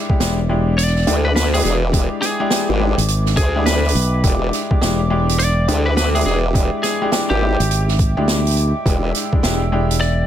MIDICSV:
0, 0, Header, 1, 7, 480
1, 0, Start_track
1, 0, Tempo, 576923
1, 1608, Time_signature, 4, 2, 24, 8
1, 8542, End_track
2, 0, Start_track
2, 0, Title_t, "Analog synth pad"
2, 0, Program_c, 0, 89
2, 0, Note_on_c, 0, 56, 83
2, 0, Note_on_c, 0, 76, 72
2, 0, Note_on_c, 0, 79, 74
2, 0, Note_on_c, 0, 86, 87
2, 7364, Note_off_c, 0, 86, 0
2, 7367, Note_on_c, 0, 88, 90
2, 8542, Note_off_c, 0, 56, 0
2, 8542, Note_off_c, 0, 76, 0
2, 8542, Note_off_c, 0, 79, 0
2, 8542, Note_off_c, 0, 88, 0
2, 8542, End_track
3, 0, Start_track
3, 0, Title_t, "Lead electric guitar"
3, 0, Program_c, 1, 29
3, 648, Note_on_c, 1, 74, 93
3, 1009, Note_off_c, 1, 74, 0
3, 1038, Note_on_c, 1, 71, 91
3, 1095, Note_off_c, 1, 71, 0
3, 1127, Note_on_c, 1, 71, 79
3, 1224, Note_off_c, 1, 71, 0
3, 1278, Note_on_c, 1, 68, 94
3, 1336, Note_off_c, 1, 68, 0
3, 1362, Note_on_c, 1, 68, 79
3, 1461, Note_off_c, 1, 68, 0
3, 1845, Note_on_c, 1, 68, 96
3, 2237, Note_off_c, 1, 68, 0
3, 2804, Note_on_c, 1, 68, 92
3, 3025, Note_off_c, 1, 68, 0
3, 3044, Note_on_c, 1, 71, 97
3, 3526, Note_off_c, 1, 71, 0
3, 4487, Note_on_c, 1, 74, 95
3, 4848, Note_off_c, 1, 74, 0
3, 4875, Note_on_c, 1, 71, 91
3, 4934, Note_off_c, 1, 71, 0
3, 4966, Note_on_c, 1, 71, 80
3, 5063, Note_off_c, 1, 71, 0
3, 5116, Note_on_c, 1, 68, 89
3, 5174, Note_off_c, 1, 68, 0
3, 5207, Note_on_c, 1, 68, 80
3, 5304, Note_off_c, 1, 68, 0
3, 5683, Note_on_c, 1, 68, 92
3, 5905, Note_off_c, 1, 68, 0
3, 6072, Note_on_c, 1, 67, 91
3, 6556, Note_off_c, 1, 67, 0
3, 8324, Note_on_c, 1, 74, 93
3, 8542, Note_off_c, 1, 74, 0
3, 8542, End_track
4, 0, Start_track
4, 0, Title_t, "Grand piano"
4, 0, Program_c, 2, 0
4, 81, Note_on_c, 2, 56, 73
4, 81, Note_on_c, 2, 64, 70
4, 82, Note_on_c, 2, 62, 70
4, 83, Note_on_c, 2, 67, 85
4, 148, Note_off_c, 2, 56, 0
4, 148, Note_off_c, 2, 62, 0
4, 148, Note_off_c, 2, 64, 0
4, 149, Note_off_c, 2, 67, 0
4, 168, Note_on_c, 2, 56, 97
4, 168, Note_on_c, 2, 64, 89
4, 169, Note_on_c, 2, 62, 86
4, 169, Note_on_c, 2, 67, 105
4, 308, Note_off_c, 2, 64, 0
4, 309, Note_off_c, 2, 56, 0
4, 309, Note_off_c, 2, 62, 0
4, 309, Note_off_c, 2, 67, 0
4, 410, Note_on_c, 2, 67, 94
4, 411, Note_on_c, 2, 56, 88
4, 411, Note_on_c, 2, 62, 80
4, 411, Note_on_c, 2, 64, 82
4, 603, Note_off_c, 2, 67, 0
4, 604, Note_off_c, 2, 56, 0
4, 604, Note_off_c, 2, 62, 0
4, 604, Note_off_c, 2, 64, 0
4, 889, Note_on_c, 2, 64, 76
4, 890, Note_on_c, 2, 56, 84
4, 890, Note_on_c, 2, 62, 77
4, 890, Note_on_c, 2, 67, 90
4, 1029, Note_off_c, 2, 56, 0
4, 1029, Note_off_c, 2, 62, 0
4, 1029, Note_off_c, 2, 64, 0
4, 1029, Note_off_c, 2, 67, 0
4, 1278, Note_on_c, 2, 56, 75
4, 1278, Note_on_c, 2, 62, 73
4, 1278, Note_on_c, 2, 64, 71
4, 1279, Note_on_c, 2, 67, 88
4, 1441, Note_off_c, 2, 64, 0
4, 1442, Note_off_c, 2, 56, 0
4, 1442, Note_off_c, 2, 62, 0
4, 1442, Note_off_c, 2, 67, 0
4, 1607, Note_on_c, 2, 56, 81
4, 1607, Note_on_c, 2, 62, 77
4, 1607, Note_on_c, 2, 64, 76
4, 1607, Note_on_c, 2, 67, 93
4, 1962, Note_off_c, 2, 56, 0
4, 1962, Note_off_c, 2, 62, 0
4, 1962, Note_off_c, 2, 64, 0
4, 1962, Note_off_c, 2, 67, 0
4, 1996, Note_on_c, 2, 56, 94
4, 1996, Note_on_c, 2, 64, 88
4, 1996, Note_on_c, 2, 67, 109
4, 1997, Note_on_c, 2, 62, 87
4, 2073, Note_off_c, 2, 56, 0
4, 2073, Note_off_c, 2, 67, 0
4, 2074, Note_off_c, 2, 62, 0
4, 2074, Note_off_c, 2, 64, 0
4, 2086, Note_on_c, 2, 62, 87
4, 2086, Note_on_c, 2, 64, 87
4, 2088, Note_on_c, 2, 56, 95
4, 2088, Note_on_c, 2, 67, 109
4, 2306, Note_off_c, 2, 62, 0
4, 2306, Note_off_c, 2, 64, 0
4, 2306, Note_off_c, 2, 67, 0
4, 2307, Note_off_c, 2, 56, 0
4, 2327, Note_on_c, 2, 56, 82
4, 2327, Note_on_c, 2, 62, 74
4, 2327, Note_on_c, 2, 64, 72
4, 2328, Note_on_c, 2, 67, 88
4, 2468, Note_off_c, 2, 56, 0
4, 2468, Note_off_c, 2, 62, 0
4, 2468, Note_off_c, 2, 64, 0
4, 2469, Note_off_c, 2, 67, 0
4, 2957, Note_on_c, 2, 62, 81
4, 2958, Note_on_c, 2, 64, 86
4, 2958, Note_on_c, 2, 67, 98
4, 2959, Note_on_c, 2, 56, 87
4, 3121, Note_off_c, 2, 62, 0
4, 3121, Note_off_c, 2, 64, 0
4, 3121, Note_off_c, 2, 67, 0
4, 3122, Note_off_c, 2, 56, 0
4, 3524, Note_on_c, 2, 64, 73
4, 3524, Note_on_c, 2, 67, 86
4, 3525, Note_on_c, 2, 56, 79
4, 3526, Note_on_c, 2, 62, 72
4, 3881, Note_off_c, 2, 56, 0
4, 3881, Note_off_c, 2, 64, 0
4, 3881, Note_off_c, 2, 67, 0
4, 3882, Note_off_c, 2, 62, 0
4, 3915, Note_on_c, 2, 56, 79
4, 3916, Note_on_c, 2, 62, 74
4, 3916, Note_on_c, 2, 64, 69
4, 3917, Note_on_c, 2, 67, 88
4, 3985, Note_off_c, 2, 56, 0
4, 3985, Note_off_c, 2, 62, 0
4, 3985, Note_off_c, 2, 64, 0
4, 3986, Note_off_c, 2, 67, 0
4, 4004, Note_on_c, 2, 62, 90
4, 4004, Note_on_c, 2, 64, 87
4, 4005, Note_on_c, 2, 56, 98
4, 4005, Note_on_c, 2, 67, 108
4, 4146, Note_off_c, 2, 62, 0
4, 4146, Note_off_c, 2, 64, 0
4, 4147, Note_off_c, 2, 56, 0
4, 4147, Note_off_c, 2, 67, 0
4, 4244, Note_on_c, 2, 62, 83
4, 4244, Note_on_c, 2, 64, 81
4, 4245, Note_on_c, 2, 56, 94
4, 4246, Note_on_c, 2, 67, 103
4, 4440, Note_off_c, 2, 62, 0
4, 4441, Note_off_c, 2, 56, 0
4, 4441, Note_off_c, 2, 64, 0
4, 4441, Note_off_c, 2, 67, 0
4, 4725, Note_on_c, 2, 56, 84
4, 4726, Note_on_c, 2, 62, 79
4, 4726, Note_on_c, 2, 64, 78
4, 4726, Note_on_c, 2, 67, 93
4, 4867, Note_off_c, 2, 56, 0
4, 4867, Note_off_c, 2, 62, 0
4, 4867, Note_off_c, 2, 64, 0
4, 4868, Note_off_c, 2, 67, 0
4, 5112, Note_on_c, 2, 62, 70
4, 5113, Note_on_c, 2, 56, 82
4, 5113, Note_on_c, 2, 64, 75
4, 5114, Note_on_c, 2, 67, 88
4, 5278, Note_off_c, 2, 62, 0
4, 5279, Note_off_c, 2, 56, 0
4, 5279, Note_off_c, 2, 64, 0
4, 5279, Note_off_c, 2, 67, 0
4, 5442, Note_on_c, 2, 62, 71
4, 5442, Note_on_c, 2, 64, 73
4, 5442, Note_on_c, 2, 67, 87
4, 5443, Note_on_c, 2, 56, 81
4, 5799, Note_off_c, 2, 62, 0
4, 5799, Note_off_c, 2, 67, 0
4, 5800, Note_off_c, 2, 56, 0
4, 5800, Note_off_c, 2, 64, 0
4, 5837, Note_on_c, 2, 56, 98
4, 5837, Note_on_c, 2, 62, 86
4, 5837, Note_on_c, 2, 64, 87
4, 5838, Note_on_c, 2, 67, 111
4, 5912, Note_off_c, 2, 64, 0
4, 5913, Note_off_c, 2, 62, 0
4, 5914, Note_off_c, 2, 56, 0
4, 5914, Note_off_c, 2, 67, 0
4, 5925, Note_on_c, 2, 62, 84
4, 5925, Note_on_c, 2, 64, 88
4, 5926, Note_on_c, 2, 67, 108
4, 5927, Note_on_c, 2, 56, 93
4, 6145, Note_off_c, 2, 62, 0
4, 6145, Note_off_c, 2, 64, 0
4, 6146, Note_off_c, 2, 56, 0
4, 6146, Note_off_c, 2, 67, 0
4, 6169, Note_on_c, 2, 67, 89
4, 6170, Note_on_c, 2, 56, 80
4, 6170, Note_on_c, 2, 62, 74
4, 6170, Note_on_c, 2, 64, 75
4, 6309, Note_off_c, 2, 56, 0
4, 6309, Note_off_c, 2, 62, 0
4, 6309, Note_off_c, 2, 64, 0
4, 6309, Note_off_c, 2, 67, 0
4, 6797, Note_on_c, 2, 64, 82
4, 6797, Note_on_c, 2, 67, 98
4, 6798, Note_on_c, 2, 56, 91
4, 6798, Note_on_c, 2, 62, 83
4, 6961, Note_off_c, 2, 62, 0
4, 6961, Note_off_c, 2, 64, 0
4, 6961, Note_off_c, 2, 67, 0
4, 6962, Note_off_c, 2, 56, 0
4, 7367, Note_on_c, 2, 62, 72
4, 7367, Note_on_c, 2, 64, 70
4, 7367, Note_on_c, 2, 67, 83
4, 7368, Note_on_c, 2, 56, 81
4, 7722, Note_off_c, 2, 56, 0
4, 7722, Note_off_c, 2, 62, 0
4, 7722, Note_off_c, 2, 64, 0
4, 7722, Note_off_c, 2, 67, 0
4, 7759, Note_on_c, 2, 56, 74
4, 7759, Note_on_c, 2, 67, 83
4, 7760, Note_on_c, 2, 62, 73
4, 7760, Note_on_c, 2, 64, 71
4, 7827, Note_off_c, 2, 56, 0
4, 7827, Note_off_c, 2, 62, 0
4, 7827, Note_off_c, 2, 64, 0
4, 7827, Note_off_c, 2, 67, 0
4, 7850, Note_on_c, 2, 56, 95
4, 7850, Note_on_c, 2, 62, 87
4, 7850, Note_on_c, 2, 64, 86
4, 7850, Note_on_c, 2, 67, 102
4, 7989, Note_off_c, 2, 56, 0
4, 7989, Note_off_c, 2, 62, 0
4, 7989, Note_off_c, 2, 64, 0
4, 7990, Note_off_c, 2, 67, 0
4, 8088, Note_on_c, 2, 56, 88
4, 8089, Note_on_c, 2, 62, 81
4, 8089, Note_on_c, 2, 64, 81
4, 8089, Note_on_c, 2, 67, 98
4, 8282, Note_off_c, 2, 56, 0
4, 8283, Note_off_c, 2, 62, 0
4, 8283, Note_off_c, 2, 64, 0
4, 8283, Note_off_c, 2, 67, 0
4, 8542, End_track
5, 0, Start_track
5, 0, Title_t, "Fingered electric bass"
5, 0, Program_c, 3, 33
5, 169, Note_on_c, 3, 28, 96
5, 874, Note_off_c, 3, 28, 0
5, 2477, Note_on_c, 3, 32, 100
5, 2793, Note_off_c, 3, 32, 0
5, 3287, Note_on_c, 3, 35, 98
5, 3513, Note_off_c, 3, 35, 0
5, 4009, Note_on_c, 3, 28, 99
5, 4714, Note_off_c, 3, 28, 0
5, 6322, Note_on_c, 3, 32, 102
5, 6776, Note_off_c, 3, 32, 0
5, 6798, Note_on_c, 3, 38, 98
5, 7254, Note_off_c, 3, 38, 0
5, 7845, Note_on_c, 3, 28, 100
5, 8542, Note_off_c, 3, 28, 0
5, 8542, End_track
6, 0, Start_track
6, 0, Title_t, "Wobble bass"
6, 0, Program_c, 4, 39
6, 890, Note_on_c, 4, 38, 102
6, 1355, Note_off_c, 4, 38, 0
6, 1369, Note_on_c, 4, 28, 101
6, 1735, Note_off_c, 4, 28, 0
6, 2239, Note_on_c, 4, 32, 100
6, 2455, Note_off_c, 4, 32, 0
6, 2805, Note_on_c, 4, 38, 104
6, 3272, Note_off_c, 4, 38, 0
6, 3525, Note_on_c, 4, 28, 102
6, 3752, Note_off_c, 4, 28, 0
6, 4727, Note_on_c, 4, 38, 101
6, 5193, Note_off_c, 4, 38, 0
6, 5204, Note_on_c, 4, 28, 104
6, 5573, Note_off_c, 4, 28, 0
6, 6075, Note_on_c, 4, 32, 103
6, 6293, Note_off_c, 4, 32, 0
6, 7367, Note_on_c, 4, 28, 103
6, 7593, Note_off_c, 4, 28, 0
6, 8542, End_track
7, 0, Start_track
7, 0, Title_t, "Drums"
7, 79, Note_on_c, 9, 36, 105
7, 162, Note_off_c, 9, 36, 0
7, 168, Note_on_c, 9, 38, 110
7, 170, Note_on_c, 9, 42, 93
7, 251, Note_off_c, 9, 38, 0
7, 253, Note_off_c, 9, 42, 0
7, 648, Note_on_c, 9, 40, 35
7, 653, Note_on_c, 9, 42, 95
7, 721, Note_off_c, 9, 40, 0
7, 721, Note_on_c, 9, 40, 29
7, 736, Note_off_c, 9, 42, 0
7, 798, Note_off_c, 9, 40, 0
7, 798, Note_on_c, 9, 40, 23
7, 843, Note_off_c, 9, 40, 0
7, 843, Note_on_c, 9, 40, 19
7, 890, Note_on_c, 9, 42, 75
7, 926, Note_off_c, 9, 40, 0
7, 973, Note_off_c, 9, 42, 0
7, 1131, Note_on_c, 9, 38, 125
7, 1137, Note_on_c, 9, 42, 88
7, 1215, Note_off_c, 9, 38, 0
7, 1220, Note_off_c, 9, 42, 0
7, 1282, Note_on_c, 9, 42, 64
7, 1326, Note_off_c, 9, 42, 0
7, 1326, Note_on_c, 9, 42, 78
7, 1371, Note_off_c, 9, 42, 0
7, 1371, Note_on_c, 9, 42, 72
7, 1373, Note_on_c, 9, 40, 35
7, 1454, Note_off_c, 9, 42, 0
7, 1456, Note_off_c, 9, 40, 0
7, 1608, Note_on_c, 9, 36, 125
7, 1609, Note_on_c, 9, 42, 89
7, 1691, Note_off_c, 9, 36, 0
7, 1693, Note_off_c, 9, 42, 0
7, 1845, Note_on_c, 9, 38, 38
7, 1847, Note_on_c, 9, 40, 37
7, 1850, Note_on_c, 9, 42, 73
7, 1928, Note_off_c, 9, 38, 0
7, 1930, Note_off_c, 9, 40, 0
7, 1933, Note_off_c, 9, 42, 0
7, 2084, Note_on_c, 9, 38, 121
7, 2092, Note_on_c, 9, 42, 98
7, 2167, Note_off_c, 9, 38, 0
7, 2176, Note_off_c, 9, 42, 0
7, 2481, Note_on_c, 9, 42, 92
7, 2564, Note_off_c, 9, 42, 0
7, 2565, Note_on_c, 9, 42, 95
7, 2648, Note_off_c, 9, 42, 0
7, 2712, Note_on_c, 9, 40, 41
7, 2796, Note_off_c, 9, 40, 0
7, 2802, Note_on_c, 9, 42, 84
7, 2807, Note_on_c, 9, 36, 115
7, 2885, Note_off_c, 9, 42, 0
7, 2890, Note_off_c, 9, 36, 0
7, 3047, Note_on_c, 9, 42, 98
7, 3050, Note_on_c, 9, 38, 127
7, 3130, Note_off_c, 9, 42, 0
7, 3133, Note_off_c, 9, 38, 0
7, 3200, Note_on_c, 9, 42, 29
7, 3232, Note_off_c, 9, 42, 0
7, 3232, Note_on_c, 9, 42, 73
7, 3259, Note_off_c, 9, 42, 0
7, 3259, Note_on_c, 9, 42, 41
7, 3288, Note_off_c, 9, 42, 0
7, 3288, Note_on_c, 9, 42, 81
7, 3337, Note_off_c, 9, 42, 0
7, 3337, Note_on_c, 9, 42, 50
7, 3421, Note_off_c, 9, 42, 0
7, 3524, Note_on_c, 9, 42, 82
7, 3526, Note_on_c, 9, 36, 127
7, 3607, Note_off_c, 9, 42, 0
7, 3609, Note_off_c, 9, 36, 0
7, 3768, Note_on_c, 9, 42, 75
7, 3769, Note_on_c, 9, 40, 36
7, 3851, Note_off_c, 9, 42, 0
7, 3852, Note_off_c, 9, 40, 0
7, 3917, Note_on_c, 9, 36, 117
7, 4000, Note_off_c, 9, 36, 0
7, 4008, Note_on_c, 9, 38, 122
7, 4013, Note_on_c, 9, 42, 89
7, 4091, Note_off_c, 9, 38, 0
7, 4096, Note_off_c, 9, 42, 0
7, 4403, Note_on_c, 9, 42, 87
7, 4486, Note_off_c, 9, 42, 0
7, 4487, Note_on_c, 9, 42, 88
7, 4490, Note_on_c, 9, 40, 39
7, 4570, Note_off_c, 9, 42, 0
7, 4574, Note_off_c, 9, 40, 0
7, 4728, Note_on_c, 9, 42, 80
7, 4811, Note_off_c, 9, 42, 0
7, 4966, Note_on_c, 9, 38, 127
7, 4969, Note_on_c, 9, 42, 99
7, 5049, Note_off_c, 9, 38, 0
7, 5052, Note_off_c, 9, 42, 0
7, 5118, Note_on_c, 9, 42, 61
7, 5165, Note_off_c, 9, 42, 0
7, 5165, Note_on_c, 9, 42, 69
7, 5214, Note_on_c, 9, 40, 36
7, 5249, Note_off_c, 9, 42, 0
7, 5297, Note_off_c, 9, 40, 0
7, 5447, Note_on_c, 9, 36, 124
7, 5449, Note_on_c, 9, 42, 83
7, 5531, Note_off_c, 9, 36, 0
7, 5532, Note_off_c, 9, 42, 0
7, 5685, Note_on_c, 9, 42, 77
7, 5689, Note_on_c, 9, 38, 41
7, 5689, Note_on_c, 9, 40, 35
7, 5768, Note_off_c, 9, 42, 0
7, 5772, Note_off_c, 9, 38, 0
7, 5772, Note_off_c, 9, 40, 0
7, 5923, Note_on_c, 9, 38, 115
7, 5930, Note_on_c, 9, 42, 87
7, 6006, Note_off_c, 9, 38, 0
7, 6014, Note_off_c, 9, 42, 0
7, 6324, Note_on_c, 9, 42, 77
7, 6407, Note_off_c, 9, 42, 0
7, 6412, Note_on_c, 9, 42, 85
7, 6496, Note_off_c, 9, 42, 0
7, 6560, Note_on_c, 9, 40, 43
7, 6643, Note_off_c, 9, 40, 0
7, 6646, Note_on_c, 9, 42, 76
7, 6648, Note_on_c, 9, 36, 112
7, 6729, Note_off_c, 9, 42, 0
7, 6731, Note_off_c, 9, 36, 0
7, 6888, Note_on_c, 9, 38, 119
7, 6895, Note_on_c, 9, 42, 82
7, 6971, Note_off_c, 9, 38, 0
7, 6978, Note_off_c, 9, 42, 0
7, 7044, Note_on_c, 9, 42, 66
7, 7079, Note_off_c, 9, 42, 0
7, 7079, Note_on_c, 9, 42, 74
7, 7127, Note_off_c, 9, 42, 0
7, 7127, Note_on_c, 9, 42, 72
7, 7210, Note_off_c, 9, 42, 0
7, 7369, Note_on_c, 9, 36, 122
7, 7373, Note_on_c, 9, 42, 80
7, 7452, Note_off_c, 9, 36, 0
7, 7456, Note_off_c, 9, 42, 0
7, 7609, Note_on_c, 9, 42, 80
7, 7616, Note_on_c, 9, 40, 32
7, 7692, Note_off_c, 9, 42, 0
7, 7699, Note_off_c, 9, 40, 0
7, 7760, Note_on_c, 9, 36, 110
7, 7843, Note_off_c, 9, 36, 0
7, 7848, Note_on_c, 9, 38, 119
7, 7851, Note_on_c, 9, 42, 80
7, 7931, Note_off_c, 9, 38, 0
7, 7934, Note_off_c, 9, 42, 0
7, 8242, Note_on_c, 9, 42, 78
7, 8324, Note_on_c, 9, 40, 33
7, 8325, Note_off_c, 9, 42, 0
7, 8408, Note_off_c, 9, 40, 0
7, 8542, End_track
0, 0, End_of_file